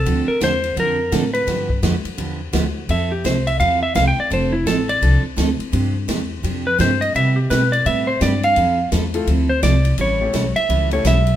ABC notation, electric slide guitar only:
X:1
M:4/4
L:1/8
Q:"Swing" 1/4=169
K:Gmix
V:1 name="Electric slide guitar"
A _B c2 B3 =B- | B2 z6 | e G c e f e (3f g d | c E A d2 z3 |
z4 z B c _e | e G B d e c d f- | f2 z3 c d2 | ^c3 e2 c e2 |]